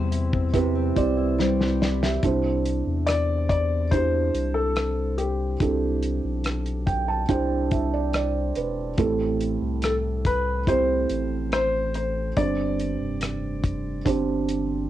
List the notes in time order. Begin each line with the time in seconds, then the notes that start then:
Already playing: E2 C3 G3 C4 E4 G4 C5
0.11 E4, closed hi-hat
0.33 C4, kick
0.53 C3 C4 E4 G4 B4, kick, closed hi-hat
0.75 C4
0.96 C2 C4 E4 G4 C5 D5, kick, closed hi-hat
1.17 E4
1.39 G3 E4 C5, snare
1.59 C5, snare
1.81 E4 D5, snare
2.02 C4 G4 E5, snare
2.23 C2 C3 D4 E4 G4 C5, kick, closed hi-hat
2.65 closed hi-hat
2.87 E2
3.07 D5, cross-stick, closed hi-hat
3.49 D5, kick, closed hi-hat
3.91 D4 E4 G4 C5, kick, closed hi-hat
4.34 C2, closed hi-hat
4.54 A4
4.76 cross-stick, closed hi-hat
5.18 G4, closed hi-hat
5.60 C2 C4 D4 E4 G4 A4, kick, closed hi-hat
6.03 closed hi-hat
6.24 B1
6.44 cross-stick, closed hi-hat
6.66 closed hi-hat
6.87 G5, kick, closed hi-hat
7.08 A5
7.29 C2 D4 E4 G4 C5 G5, kick, closed hi-hat
7.71 E5, kick, closed hi-hat
7.94 D5
8.13 D5, cross-stick, closed hi-hat
8.55 E1 B4, closed hi-hat
8.98 A1 A2 C4 E4 G4 A4, kick, closed hi-hat
9.41 closed hi-hat
9.62 C2
9.82 A4, cross-stick, closed hi-hat
10.25 B4, kick, closed hi-hat
10.67 C4 E4 G4 C5, kick, closed hi-hat
11.10 A1, closed hi-hat
11.52 C5, cross-stick, closed hi-hat
11.94 C5, closed hi-hat
12.37 G1 G2 C4 D4 G4 C5 D5, kick, closed hi-hat
12.79 closed hi-hat
13.00 F1
13.21 cross-stick, closed hi-hat
13.64 kick, closed hi-hat
14.05 G1 C4 D4 G4 C5, kick, closed hi-hat
14.48 closed hi-hat